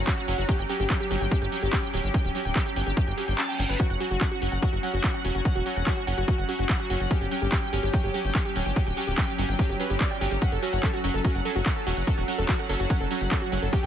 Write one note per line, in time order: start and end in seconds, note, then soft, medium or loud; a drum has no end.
0.00 3.79 F#3 medium
0.00 3.79 C#4 medium
0.07 0.10 F#4 medium
0.07 kick loud
0.07 clap loud
0.07 closed hi-hat medium
0.07 ride medium
0.18 0.23 F#4 medium
0.18 closed hi-hat medium
0.28 0.34 F#1 medium
0.28 0.36 F#5 medium
0.28 open hi-hat loud
0.28 ride medium
0.38 0.44 F#1 medium
0.38 0.41 F#4 medium
0.38 closed hi-hat medium
0.49 0.54 G4 medium
0.49 kick loud
0.49 closed hi-hat loud
0.49 ride medium
0.59 0.65 G1 medium
0.59 0.67 G5 medium
0.59 closed hi-hat medium
0.69 0.73 G4 medium
0.69 open hi-hat loud
0.69 ride medium
0.80 0.86 G1 medium
0.80 0.85 G4 medium
0.80 closed hi-hat medium
0.90 0.98 G5 medium
0.90 kick loud
0.90 clap loud
0.90 closed hi-hat medium
0.90 ride medium
1.00 1.04 G4 medium
1.00 closed hi-hat medium
1.11 1.17 G1 loud
1.11 1.16 G4 medium
1.11 open hi-hat loud
1.11 ride medium
1.21 1.27 G1 medium
1.21 1.29 G5 medium
1.21 closed hi-hat medium
1.31 1.35 G4 medium
1.31 kick loud
1.31 closed hi-hat loud
1.31 ride medium
1.42 1.48 G1 medium
1.42 1.47 G4 medium
1.42 closed hi-hat medium
1.52 1.60 G5 medium
1.52 open hi-hat loud
1.52 ride medium
1.62 1.69 G1 medium
1.62 1.66 G4 medium
1.62 closed hi-hat medium
1.73 1.78 G4 medium
1.73 kick loud
1.73 clap loud
1.73 closed hi-hat loud
1.73 ride medium
1.83 1.91 G5 medium
1.83 closed hi-hat medium
1.93 2.00 D1 medium
1.93 1.97 G4 medium
1.93 open hi-hat loud
1.93 ride medium
2.04 2.10 G1 medium
2.04 2.09 G4 medium
2.04 closed hi-hat medium
2.14 2.22 G5 medium
2.14 kick loud
2.14 closed hi-hat loud
2.14 ride medium
2.24 2.31 D1 medium
2.24 2.28 G4 medium
2.24 closed hi-hat medium
2.35 2.40 G4 medium
2.35 open hi-hat loud
2.35 ride medium
2.45 2.51 D1 medium
2.45 2.53 G5 medium
2.45 closed hi-hat medium
2.56 2.59 G4 medium
2.56 kick loud
2.56 clap loud
2.56 closed hi-hat loud
2.56 ride medium
2.66 2.71 G4 medium
2.66 closed hi-hat medium
2.76 2.82 G1 medium
2.76 2.84 G5 medium
2.76 open hi-hat loud
2.76 ride medium
2.87 2.93 G1 medium
2.87 2.90 G4 medium
2.87 closed hi-hat medium
2.97 3.02 G4 medium
2.97 kick loud
2.97 closed hi-hat loud
2.97 ride medium
2.97 reverse cymbal medium
3.07 3.13 G1 medium
3.07 3.15 G5 medium
3.07 closed hi-hat medium
3.18 3.26 G4 medium
3.18 open hi-hat loud
3.18 ride medium
3.28 3.34 G1 medium
3.28 3.36 G5 medium
3.28 closed hi-hat medium
3.38 3.46 A5 loud
3.38 clap loud
3.38 closed hi-hat loud
3.38 ride medium
3.49 3.52 G5 medium
3.49 closed hi-hat medium
3.59 3.65 G1 medium
3.59 3.67 G5 medium
3.59 open hi-hat loud
3.59 ride medium
3.69 3.76 G1 medium
3.69 3.75 B4 medium
3.69 closed hi-hat soft
3.80 13.86 F#3 medium
3.80 13.86 C#4 medium
3.80 3.85 F#4 medium
3.80 kick loud
3.80 closed hi-hat loud
3.80 ride medium
3.90 3.96 F#1 medium
3.90 3.98 F#5 medium
3.90 closed hi-hat medium
4.00 4.04 F#4 medium
4.00 open hi-hat loud
4.00 ride medium
4.11 4.17 F#1 medium
4.11 4.16 F#4 medium
4.11 closed hi-hat medium
4.21 4.29 F#5 medium
4.21 kick loud
4.21 clap loud
4.21 closed hi-hat loud
4.21 ride medium
4.31 4.35 F#4 medium
4.31 closed hi-hat medium
4.42 4.48 F#1 loud
4.42 4.47 F#4 medium
4.42 open hi-hat loud
4.42 ride medium
4.52 4.58 F#1 medium
4.52 4.60 F#5 medium
4.52 closed hi-hat medium
4.62 4.66 F#4 medium
4.62 kick loud
4.62 closed hi-hat loud
4.62 ride medium
4.73 4.79 F#1 medium
4.73 4.78 F#4 medium
4.73 closed hi-hat medium
4.83 4.91 F#5 medium
4.83 open hi-hat loud
4.83 ride medium
4.93 5.00 F#1 medium
4.93 4.97 F#4 medium
4.93 closed hi-hat medium
5.04 5.09 F#4 medium
5.04 kick loud
5.04 clap loud
5.04 closed hi-hat medium
5.04 ride medium
5.14 5.22 F#5 medium
5.14 closed hi-hat medium
5.24 5.31 E1 loud
5.24 5.28 F#4 medium
5.24 open hi-hat loud
5.24 ride medium
5.35 5.41 F#1 medium
5.35 5.40 F#4 medium
5.35 closed hi-hat medium
5.45 5.53 F#5 medium
5.45 kick loud
5.45 closed hi-hat medium
5.45 ride medium
5.55 5.62 E1 medium
5.55 5.59 F#4 medium
5.55 closed hi-hat medium
5.66 5.71 F#4 medium
5.66 open hi-hat loud
5.66 ride medium
5.76 5.82 E1 medium
5.76 5.84 F#5 medium
5.76 closed hi-hat medium
5.87 5.90 F#4 medium
5.87 kick loud
5.87 clap loud
5.87 closed hi-hat medium
5.87 ride medium
5.97 6.02 F#4 medium
5.97 closed hi-hat medium
6.07 6.13 F#1 medium
6.07 6.15 F#5 medium
6.07 open hi-hat loud
6.07 ride medium
6.18 6.24 F#1 medium
6.18 6.21 F#4 medium
6.18 closed hi-hat medium
6.28 6.33 F#4 medium
6.28 kick loud
6.28 closed hi-hat loud
6.28 ride medium
6.38 6.44 F#1 medium
6.38 6.46 F#5 medium
6.38 closed hi-hat medium
6.49 6.52 F#4 medium
6.49 open hi-hat loud
6.49 ride medium
6.59 6.65 F#1 medium
6.59 6.64 F#4 medium
6.59 closed hi-hat medium
6.69 6.77 F#5 medium
6.69 kick loud
6.69 clap loud
6.69 closed hi-hat loud
6.69 ride medium
6.80 6.83 F#4 medium
6.80 closed hi-hat medium
6.90 6.96 F#1 medium
6.90 6.95 F#4 medium
6.90 open hi-hat loud
6.90 ride medium
7.00 7.07 F#1 medium
7.00 7.08 F#5 medium
7.00 closed hi-hat soft
7.11 7.14 G4 medium
7.11 kick loud
7.11 closed hi-hat medium
7.11 ride medium
7.21 7.27 G1 medium
7.21 7.26 G4 medium
7.21 closed hi-hat medium
7.31 7.39 G5 medium
7.31 open hi-hat loud
7.31 ride medium
7.42 7.48 G1 medium
7.42 7.45 G4 medium
7.42 closed hi-hat medium
7.52 7.57 G4 medium
7.52 kick loud
7.52 clap loud
7.52 closed hi-hat medium
7.52 ride medium
7.62 7.70 G5 medium
7.62 closed hi-hat medium
7.73 7.79 G1 medium
7.73 7.76 G4 medium
7.73 open hi-hat loud
7.73 ride medium
7.83 7.89 G1 medium
7.83 7.88 G4 medium
7.83 closed hi-hat medium
7.93 8.01 G5 medium
7.93 kick loud
7.93 closed hi-hat medium
7.93 ride medium
8.04 8.10 G1 medium
8.04 8.07 G4 medium
8.04 closed hi-hat medium
8.14 8.19 G4 medium
8.14 open hi-hat loud
8.14 ride medium
8.25 8.31 G1 medium
8.25 8.32 G5 medium
8.25 closed hi-hat medium
8.35 8.38 G4 medium
8.35 kick loud
8.35 clap loud
8.35 closed hi-hat medium
8.35 ride medium
8.45 8.50 G4 medium
8.45 closed hi-hat medium
8.56 8.62 D1 medium
8.56 8.64 G5 medium
8.56 open hi-hat loud
8.56 ride medium
8.66 8.72 G1 medium
8.66 8.69 G4 medium
8.66 closed hi-hat soft
8.76 8.82 G4 medium
8.76 kick loud
8.76 closed hi-hat medium
8.76 ride medium
8.87 8.93 D1 medium
8.87 8.95 G5 medium
8.87 closed hi-hat soft
8.97 9.00 G4 medium
8.97 open hi-hat loud
8.97 ride medium
9.07 9.13 D1 medium
9.07 9.13 G4 medium
9.07 closed hi-hat medium
9.18 9.26 G5 medium
9.18 kick loud
9.18 clap loud
9.18 closed hi-hat medium
9.18 ride medium
9.28 9.31 G4 medium
9.28 closed hi-hat medium
9.38 9.45 G1 medium
9.38 9.44 G4 medium
9.38 open hi-hat loud
9.38 ride medium
9.49 9.55 G1 medium
9.49 9.57 G5 medium
9.49 closed hi-hat soft
9.59 9.62 G4 medium
9.59 kick loud
9.59 closed hi-hat medium
9.59 ride medium
9.69 9.76 G1 medium
9.69 9.75 G4 medium
9.69 closed hi-hat medium
9.80 9.85 B4 medium
9.80 open hi-hat loud
9.80 ride medium
9.90 9.96 G1 medium
9.90 9.95 G4 medium
9.90 closed hi-hat medium
10.00 10.08 D5 medium
10.00 kick loud
10.00 clap loud
10.00 closed hi-hat medium
10.00 ride medium
10.11 10.16 G5 medium
10.11 closed hi-hat medium
10.21 10.27 G1 loud
10.21 10.24 G4 medium
10.21 open hi-hat loud
10.21 ride medium
10.31 10.38 G1 medium
10.31 10.35 G4 medium
10.31 closed hi-hat soft
10.42 10.50 F#5 medium
10.42 kick loud
10.42 closed hi-hat medium
10.42 ride medium
10.52 10.58 F#1 medium
10.52 10.60 A4 medium
10.52 closed hi-hat soft
10.62 10.68 F#4 medium
10.62 open hi-hat loud
10.62 ride medium
10.73 10.79 F#1 medium
10.73 10.81 F#5 medium
10.73 closed hi-hat medium
10.83 10.91 A4 medium
10.83 kick loud
10.83 clap loud
10.83 closed hi-hat medium
10.83 ride medium
10.93 10.99 F#4 medium
10.93 closed hi-hat medium
11.04 11.10 F#1 medium
11.04 11.12 F#5 medium
11.04 open hi-hat loud
11.04 ride medium
11.14 11.20 F#1 medium
11.14 11.22 A4 medium
11.14 closed hi-hat medium
11.24 11.30 F#4 medium
11.24 kick loud
11.24 closed hi-hat medium
11.24 ride medium
11.35 11.41 F#1 medium
11.35 11.43 F#5 medium
11.35 closed hi-hat soft
11.45 11.53 A4 medium
11.45 open hi-hat loud
11.45 ride medium
11.56 11.62 F#1 medium
11.56 11.61 F#4 medium
11.56 closed hi-hat medium
11.66 11.74 F#5 medium
11.66 kick loud
11.66 clap loud
11.66 closed hi-hat medium
11.66 ride medium
11.76 11.84 A4 medium
11.76 closed hi-hat medium
11.87 11.93 E1 medium
11.87 11.92 F#4 medium
11.87 open hi-hat loud
11.87 ride medium
11.97 12.03 F#1 medium
11.97 12.05 F#5 medium
11.97 closed hi-hat soft
12.07 12.15 A4 medium
12.07 kick loud
12.07 closed hi-hat medium
12.07 ride medium
12.18 12.24 E1 medium
12.18 12.23 F#4 medium
12.18 closed hi-hat medium
12.28 12.36 F#5 medium
12.28 open hi-hat loud
12.28 ride medium
12.38 12.44 E1 medium
12.38 12.46 A4 medium
12.38 closed hi-hat medium
12.49 12.54 F#4 medium
12.49 kick loud
12.49 clap loud
12.49 closed hi-hat medium
12.49 ride medium
12.59 12.67 F#5 medium
12.59 closed hi-hat medium
12.69 12.76 F#1 medium
12.69 12.77 A4 medium
12.69 open hi-hat loud
12.69 ride medium
12.80 12.86 F#1 medium
12.80 12.85 F#4 medium
12.80 closed hi-hat medium
12.90 12.98 F#5 medium
12.90 kick loud
12.90 closed hi-hat medium
12.90 ride medium
13.00 13.07 F#1 medium
13.00 13.08 A4 medium
13.00 closed hi-hat medium
13.11 13.16 F#4 medium
13.11 open hi-hat loud
13.11 ride medium
13.21 13.27 F#1 medium
13.21 13.29 F#5 medium
13.21 closed hi-hat medium
13.31 13.39 A4 medium
13.31 kick loud
13.31 clap loud
13.31 closed hi-hat loud
13.31 ride medium
13.42 13.47 F#4 medium
13.42 closed hi-hat medium
13.52 13.58 F#1 medium
13.52 13.60 F#5 medium
13.52 open hi-hat loud
13.52 ride medium
13.62 13.69 F#1 medium
13.62 13.70 A4 medium
13.62 closed hi-hat soft
13.73 13.78 G4 medium
13.73 kick loud
13.73 closed hi-hat medium
13.73 ride medium
13.83 13.86 G1 medium
13.83 13.86 G5 medium
13.83 closed hi-hat medium